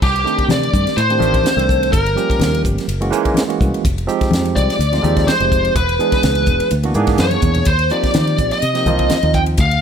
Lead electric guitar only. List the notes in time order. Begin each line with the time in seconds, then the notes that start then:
0.03 G4
0.51 D5
0.97 C5
1.92 A#4
4.56 D5
5.28 C5
5.76 B4
7.20 C#5
7.67 C5
7.92 D5
8.52 D#5
9.35 G5
9.61 F5